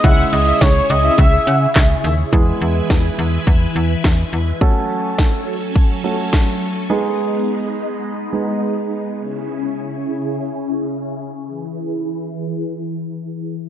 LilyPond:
<<
  \new Staff \with { instrumentName = "Analog polysynth" } { \time 4/4 \key e \major \tempo 4 = 105 fis''8 r16 e''16 r16 cis''16 r16 e''16 e''8 fis''16 r8. e''16 r16 | r1 | r1 | r1 |
r1 | r1 | }
  \new Staff \with { instrumentName = "Analog synth lead" } { \time 4/4 \key e \major e''8 dis''8 cis''8 dis''8 e''4. r8 | r1 | r1 | r1 |
r1 | r1 | }
  \new Staff \with { instrumentName = "String machine" } { \time 4/4 \key e \major << { <cis cis' gis'>1 | <e e' b'>1 | <fis cis' a'>1 | <gis dis'>1 |
<cis cis' gis'>1 | <e e' gis' b'>1 | } \\ { e'1 | gis''1~ | gis''1 | b1 |
e'1 | r1 | } >> }
  \new Staff \with { instrumentName = "Grand piano" } { \time 4/4 \key e \major <gis cis' e' gis'>1 | <gis b e' gis'>1 | <a cis' fis' a'>2~ <a cis' fis' a'>8 <a cis' fis' a'>4. | <gis b dis' gis'>2~ <gis b dis' gis'>8 <gis b dis' gis'>4. |
r1 | r1 | }
  \new Staff \with { instrumentName = "FM bass" } { \clef bass \time 4/4 \key e \major cis,8 cis,8 cis,8 cis,8 cis,8 cis8 cis,8 dis,8 | e,8 e,8 e,8 e,8 e,8 e,8 e,8 e,8 | r1 | r1 |
r1 | r1 | }
  \new DrumStaff \with { instrumentName = "Drums" } \drummode { \time 4/4 <hh bd>8 hh8 <hh bd sn>8 hh8 <hh bd>8 hh8 <hc hh bd sn>8 hho8 | bd4 <bd sn>4 bd4 <bd sn>4 | bd4 <bd sn>4 bd4 <bd sn>4 | r4 r4 r4 r4 |
r4 r4 r4 r4 | r4 r4 r4 r4 | }
>>